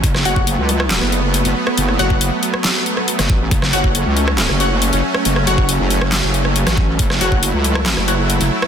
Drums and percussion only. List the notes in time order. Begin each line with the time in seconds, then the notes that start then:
0.04 kick, closed hi-hat
0.15 cross-stick, snare
0.25 closed hi-hat
0.36 kick
0.47 closed hi-hat
0.69 closed hi-hat
0.80 cross-stick
0.91 snare, clap, closed hi-hat
1.02 cross-stick
1.12 closed hi-hat
1.34 closed hi-hat
1.45 closed hi-hat
1.67 cross-stick
1.78 closed hi-hat
1.88 cross-stick
1.99 closed hi-hat
2.10 kick
2.21 closed hi-hat
2.43 closed hi-hat
2.54 cross-stick
2.64 snare, clap, closed hi-hat
2.86 closed hi-hat
2.97 cross-stick
3.08 closed hi-hat
3.19 cross-stick, snare, closed hi-hat
3.30 kick
3.51 kick, closed hi-hat
3.62 cross-stick, snare
3.73 closed hi-hat
3.84 kick
3.95 closed hi-hat
4.17 closed hi-hat
4.28 cross-stick
4.38 snare, clap, closed hi-hat
4.49 cross-stick
4.60 closed hi-hat
4.82 closed hi-hat
4.93 closed hi-hat
5.14 cross-stick
5.25 closed hi-hat
5.36 cross-stick
5.47 closed hi-hat
5.58 kick
5.69 closed hi-hat
5.90 closed hi-hat
6.01 cross-stick
6.12 snare, clap, closed hi-hat
6.34 closed hi-hat
6.45 cross-stick
6.56 closed hi-hat
6.67 cross-stick, snare, closed hi-hat
6.77 kick
6.99 kick, closed hi-hat
7.10 cross-stick, snare
7.21 closed hi-hat
7.32 kick
7.43 closed hi-hat
7.64 closed hi-hat
7.75 cross-stick
7.86 snare, clap, closed hi-hat
7.97 cross-stick
8.08 closed hi-hat
8.30 closed hi-hat
8.41 closed hi-hat
8.62 cross-stick